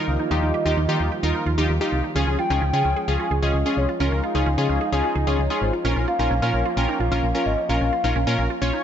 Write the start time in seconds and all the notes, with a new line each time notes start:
Already playing: D#3 F3 G3 A#3 D#4 F4 A#4
0.08 C#2 D#5
0.19 D#4
0.31 D#2 D#4 F4 G4
0.42 D#2 D#4
0.54 G4
0.66 D#2 D#4 F4 G4
0.77 D#2 D#4
0.89 D#3 D#4 F4 G4
1.00 D#2 D#4
1.12 G4
1.23 D#2 D#4 F4 A#4
1.35 D#4
1.46 D#2 F4
1.58 D#2 D#4 F4 G4
1.69 D#2
1.81 D#4 F4 G4
1.92 C2
2.04 D#4
2.15 C#2 G#3 C#4 F4 G#4
2.27 C#2 C#4
2.39 F4 G5
2.50 C#2 C#4 D#4 F4 G#4
2.62 C#2 C#4
2.73 C#3 C#4 F4 G#4
2.85 C#2 C#4
2.96 G#4
3.08 C#2 C#4 F4 G#4 G#5
3.20 F4
3.31 C#2 G#4
3.42 C#2 C#4 F4 G#4 D#5
3.54 C#2
3.66 C#4 F4 G#4
3.77 C2 C#5
3.89 F4
4.00 C#2 C#4 D#4 F4 A#4
4.12 C#2 C#4
4.23 F4 F5
4.35 C#2 C#4 D#4 F4 G#4
4.46 C#2 C#4
4.58 C#3 C#4 F4 G#4
4.69 C#2 C#4
4.81 G#4
4.92 C#2 C#4 F4 G#4 G#5
5.04 F4
5.15 C#2 G#4
5.27 C#2 C#4 F4 G#4 C#5
5.39 C#2
5.50 C#4 F4 G#4
5.62 G#1 C5
5.73 F4
5.84 A#1 F3 A#3 C#4 F4 A#4
5.96 A#1 C#4
6.08 F4 F5
6.19 A#1 C#4 D#4 F4 A#4
6.31 A#1 C#4
6.42 A#2 C#4 F4 A#4
6.54 A#1 C#4
6.66 F4
6.77 A#1 C#4 F4 A#4 G5
6.89 D#4
7.00 A#1 F4 F5
7.11 A#1 C#4 F4 A#4
7.23 A#1
7.35 C#4 F4 A#4
7.46 G#1 D#5
7.58 C#4
7.69 A#1 C#4 F4 A#4 F5
7.81 A#1 C#4
7.93 F4
8.04 A#1 C#4 D#4 F4 A#4
8.16 A#1 C#4
8.27 A#2 C#4 F4 A#4
8.39 A#1 C#4
8.50 F4
8.62 A#1 C#4 F4 C#5
8.73 D#4